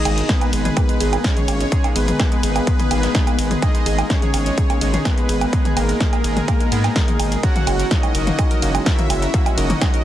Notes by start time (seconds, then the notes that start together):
Already playing: B2 G#3 D#4 G#4 D#5
0.05 G#1 A#3, open hi-hat, ride, low woodblock
0.18 G#3, closed hi-hat
0.29 B3 G#4 B4, kick, snare, closed hi-hat, ride
0.41 A#3, closed hi-hat, low woodblock
0.53 G#1 G#3 D#4 G#4, open hi-hat, ride
0.65 G#4, closed hi-hat, mid tom
0.77 A#3, kick, closed hi-hat, ride, low woodblock
0.89 G#3, closed hi-hat
1.00 G#1 G#3 D#4 G#4, open hi-hat, ride
1.13 A#3, closed hi-hat, low woodblock
1.24 G#3 C#4 C#5, kick, snare, closed hi-hat, ride
1.37 G#4, closed hi-hat, mid tom
1.48 G#1 A#3, open hi-hat, ride, low woodblock
1.60 G#3, closed hi-hat
1.72 G#3 D#4 G#4, kick, closed hi-hat, ride
1.84 A#3, closed hi-hat, low woodblock
1.96 G#1 G#3 B3 B4, open hi-hat, ride
2.08 G#4, closed hi-hat, mid tom
2.20 A#3, kick, snare, closed hi-hat, ride, low woodblock
2.32 G#3, closed hi-hat
2.43 G#1 G#3 D#4 G#4, open hi-hat, ride
2.56 A#3, closed hi-hat, low woodblock
2.67 G#3, kick, closed hi-hat, ride
2.79 G#4, closed hi-hat, mid tom
2.91 G#1 G#3 A#3 D#4 G#4, open hi-hat, ride, low woodblock
3.03 G#3, snare, closed hi-hat
3.15 G#4, kick, snare, closed hi-hat, ride
3.27 A#3, closed hi-hat, low woodblock
3.39 G#1 G#3, open hi-hat, ride
3.51 G#4, closed hi-hat, mid tom
3.62 G#3 A#3 D#4 G#4 D#5, kick, closed hi-hat, ride, low woodblock
3.75 G#3, closed hi-hat
3.86 G#1 G#4, open hi-hat, ride
3.99 A#3, closed hi-hat, low woodblock
4.10 G#3 C#4 C#5, kick, snare, closed hi-hat, ride
4.22 G#4, closed hi-hat, mid tom
4.34 G#1 G#3 A#3 D#4 G#4, open hi-hat, ride, low woodblock
4.46 G#3, closed hi-hat
4.58 G#4, kick, closed hi-hat, ride
4.70 A#3, closed hi-hat, low woodblock
4.81 G#1 G#3 D#4 G#4, open hi-hat, ride
4.94 G#4, closed hi-hat, mid tom
5.05 A#3 B3 B4, kick, snare, closed hi-hat, ride, low woodblock
5.18 G#3, closed hi-hat
5.29 G#1 G#4, open hi-hat, ride
5.41 A#3, closed hi-hat, low woodblock
5.53 G#3 D#4 G#4, kick, closed hi-hat, ride
5.65 G#4, closed hi-hat, mid tom
5.77 G#1 A#3 A#4, open hi-hat, ride, low woodblock
5.89 G#3, closed hi-hat
6.01 G#4, kick, snare, closed hi-hat, ride
6.13 A#3, closed hi-hat, low woodblock
6.24 G#1 G#3 D#4 G#4, open hi-hat, ride
6.37 G#4, closed hi-hat, mid tom
6.48 A#3, kick, closed hi-hat, ride, low woodblock
6.60 G#3, closed hi-hat
6.72 G#2 G#3 B3 D#4 G#4, open hi-hat, ride
6.84 B3, snare, closed hi-hat, low woodblock
6.96 D#3, kick, snare, closed hi-hat, ride
7.08 D#4, closed hi-hat, mid tom
7.19 G#1 D#4, open hi-hat, ride, low woodblock
7.32 G#4, closed hi-hat
7.43 E3 F#3 A#3 C#4 F#4 A#4 F#5, kick, closed hi-hat, ride
7.56 A#3, closed hi-hat, mid tom
7.67 F#1 G#3, open hi-hat, ride, low woodblock
7.79 A#4, closed hi-hat
7.91 A#3 D#4 D#5, kick, snare, closed hi-hat, ride
8.03 G#3, closed hi-hat, low woodblock
8.15 F#1 F#3 C#4 F#4 A#4, open hi-hat, ride
8.27 A#3, closed hi-hat, mid tom
8.39 G#3, kick, closed hi-hat, ride, low woodblock
8.51 A#4, closed hi-hat
8.62 F#1 F#3 A#3 C#4 F#4, open hi-hat, ride
8.75 G#3, closed hi-hat, low woodblock
8.86 E4 A#4 E5, kick, snare, closed hi-hat, ride
8.99 A#3, closed hi-hat, mid tom
9.10 F#1 G#3, open hi-hat, ride, low woodblock
9.22 A#4, closed hi-hat
9.34 F#3 A#3 C#4 F#4, kick, closed hi-hat, ride
9.46 G#3, closed hi-hat, low woodblock
9.58 F#1 D#4 A#4 D#5, open hi-hat, ride
9.70 A#3, closed hi-hat, mid tom
9.81 G#3, kick, snare, closed hi-hat, ride, low woodblock
9.94 A#4, closed hi-hat